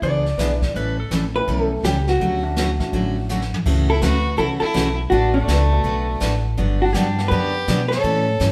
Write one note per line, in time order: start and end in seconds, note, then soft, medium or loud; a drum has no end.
0.02 0.33 C#2 medium
0.02 0.24 E3 medium
0.02 0.24 B3 medium
0.02 0.25 D4 medium
0.02 0.25 G#4 medium
0.02 0.73 D5 loud
0.02 brush sweep medium
0.02 kick soft
0.26 snare soft
0.38 0.69 B1 medium
0.38 0.50 E3 medium
0.38 0.59 B3 medium
0.38 0.50 B3 medium
0.38 0.60 D4 medium
0.38 0.51 D4 medium
0.38 0.60 E4 medium
0.38 0.51 G#4 medium
0.38 0.60 B4 medium
0.38 snare medium
0.38 hi-hat pedal medium
0.62 kick medium
0.62 snare soft
0.74 1.04 A1 medium
0.74 0.97 E3 medium
0.74 0.97 G3 medium
0.74 0.98 C#4 medium
0.74 0.98 E4 medium
0.74 0.98 A4 medium
0.74 0.98 B4 medium
0.74 brush sweep medium
0.74 kick soft
1.00 1.12 A4 medium
1.11 1.42 A1 medium
1.11 1.23 E3 medium
1.11 1.23 G3 medium
1.11 1.23 C#4 medium
1.11 1.23 E4 medium
1.11 1.23 A4 medium
1.11 snare medium
1.11 hi-hat pedal medium
1.34 1.81 A3 medium
1.34 1.82 C#4 medium
1.34 1.82 E4 medium
1.34 1.82 G4 medium
1.34 1.49 B4 loud
1.48 1.79 B1 medium
1.48 1.70 E3 medium
1.48 1.70 G3 soft
1.48 1.70 C#4 medium
1.48 1.70 E4 medium
1.48 1.86 A4 loud
1.48 1.70 A4 medium
1.48 brush sweep soft
1.48 kick soft
1.83 2.15 C#2 medium
1.83 1.96 E3 medium
1.83 1.96 G3 medium
1.83 1.96 C#4 medium
1.83 1.97 E4 medium
1.83 2.06 G4 medium
1.83 1.96 A4 medium
1.83 snare medium
1.83 hi-hat pedal medium
2.07 3.27 F#4 medium
2.07 snare soft
2.20 2.78 D2 medium
2.20 2.43 D3 medium
2.20 2.43 F#3 medium
2.20 2.43 A3 medium
2.20 2.43 C#4 medium
2.20 2.43 F#4 medium
2.20 brush sweep soft
2.20 kick soft
2.43 2.55 A3 medium
2.43 2.55 C#4 medium
2.43 2.55 D4 medium
2.43 2.55 F#4 medium
2.56 2.69 D3 medium
2.56 2.69 F#3 medium
2.56 2.69 A3 medium
2.56 2.69 C#4 medium
2.56 2.69 F#4 medium
2.56 snare medium
2.56 hi-hat pedal medium
2.79 3.26 A3 medium
2.79 3.27 C#4 medium
2.79 3.27 D4 medium
2.79 3.27 F#4 medium
2.79 kick medium
2.79 snare soft
2.92 3.51 A1 medium
2.92 3.15 D3 soft
2.92 3.15 F#3 medium
2.92 3.15 A3 medium
2.92 3.15 C#4 medium
2.92 3.15 F#4 medium
2.92 brush sweep soft
2.92 kick soft
3.29 3.41 D3 medium
3.29 3.41 F#3 medium
3.29 3.42 A3 medium
3.29 3.42 C#4 medium
3.29 3.42 F#4 medium
3.29 hi-hat pedal medium
3.42 snare medium
3.54 floor tom medium
3.66 4.01 C#2 medium
3.66 3.88 C#3 medium
3.66 3.88 E3 medium
3.66 4.67 A3 medium
3.66 3.88 A3 medium
3.66 4.68 C#4 medium
3.66 3.89 C#4 medium
3.66 4.68 E4 medium
3.66 4.68 F#4 medium
3.66 3.89 F#4 medium
3.66 4.68 A4 medium
3.66 brush sweep soft
3.66 kick medium
3.66 crash medium
3.89 4.04 E4 medium
3.89 4.02 A4 loud
4.02 4.38 D2 medium
4.02 4.14 C#3 medium
4.02 4.14 E3 medium
4.02 4.14 A3 medium
4.02 4.14 C#4 medium
4.02 4.14 F#4 medium
4.02 4.37 F#4 medium
4.02 4.38 B4 loud
4.02 snare medium
4.02 hi-hat pedal medium
4.37 4.61 C2 medium
4.37 4.60 C#3 medium
4.37 4.60 E3 medium
4.37 4.61 A3 medium
4.37 4.61 C#4 medium
4.37 4.49 E4 medium
4.37 4.61 F#4 medium
4.37 4.44 A4 medium
4.37 brush sweep soft
4.37 kick soft
4.60 4.96 E4 medium
4.60 4.95 A4 medium
4.60 muted upright bass stroke soft
4.74 5.10 B1 loud
4.74 4.86 C#3 medium
4.74 4.87 E3 medium
4.74 4.87 A3 medium
4.74 4.87 C#4 medium
4.74 4.87 F#4 medium
4.74 snare medium
4.74 hi-hat pedal medium
5.10 5.47 A1 medium
5.10 5.34 A3 medium
5.10 5.32 D4 medium
5.10 5.34 D4 medium
5.10 5.33 F#4 medium
5.10 5.34 F#4 medium
5.10 5.34 B4 medium
5.10 brush sweep soft
5.10 kick soft
5.33 6.40 A3 medium
5.33 6.40 D4 medium
5.48 5.83 C#2 medium
5.48 5.60 A3 medium
5.48 5.60 D4 medium
5.48 5.61 F#4 medium
5.48 5.61 B4 medium
5.48 snare medium
5.48 hi-hat pedal soft
5.72 6.19 A3 medium
5.72 6.19 B3 medium
5.72 6.19 D4 medium
5.72 6.19 F#4 medium
5.72 6.19 A4 medium
5.84 6.20 B1 medium
5.84 6.06 A3 medium
5.84 6.06 D4 medium
5.84 6.07 F#4 medium
5.84 6.07 B4 medium
5.84 brush sweep medium
5.84 kick soft
6.20 6.56 A1 medium
6.20 6.32 A3 medium
6.20 6.33 D4 medium
6.20 6.33 F#4 medium
6.20 6.33 B4 medium
6.20 snare medium
6.20 hi-hat pedal medium
6.58 6.93 G1 medium
6.58 6.80 D3 medium
6.58 6.80 F#3 medium
6.58 6.80 B3 medium
6.58 6.80 D4 medium
6.58 6.80 G4 medium
6.58 brush sweep soft
6.58 kick soft
6.81 6.93 D4 medium
6.81 6.93 F#4 medium
6.93 7.29 G2 medium
6.93 7.06 D3 medium
6.93 7.06 F#3 medium
6.93 7.06 B3 medium
6.93 7.29 D4 medium
6.93 7.07 D4 medium
6.93 7.31 G4 medium
6.93 7.07 G4 medium
6.93 snare medium
6.93 hi-hat pedal medium
7.17 7.64 D3 medium
7.17 7.65 B3 medium
7.17 7.65 D4 medium
7.17 7.65 G4 medium
7.17 7.65 F#5 medium
7.17 snare soft
7.28 7.66 F#2 medium
7.28 7.53 D3 medium
7.28 7.53 F#3 medium
7.28 7.53 B3 medium
7.28 7.53 D4 medium
7.28 7.86 G4 medium
7.28 7.53 G4 medium
7.28 7.88 B4 loud
7.28 brush sweep medium
7.28 kick soft
7.68 8.03 B2 medium
7.68 7.79 D3 medium
7.68 7.79 F#3 medium
7.68 7.79 B3 medium
7.68 7.80 D4 medium
7.68 7.80 G4 medium
7.68 snare medium
7.68 hi-hat pedal medium
7.88 8.52 A4 medium
7.88 8.52 C#5 medium
7.88 snare soft
8.03 8.39 A2 medium
8.03 8.25 E3 medium
8.03 8.26 G3 medium
8.03 8.26 C#4 medium
8.03 8.26 E4 medium
8.03 8.26 A4 medium
8.03 brush sweep medium
8.03 kick soft
8.40 8.52 G2 medium
8.40 8.52 E3 medium
8.40 8.52 G3 medium
8.40 8.52 C#4 medium
8.40 8.52 E4 medium
8.40 8.52 A4 medium
8.40 snare medium
8.40 hi-hat pedal medium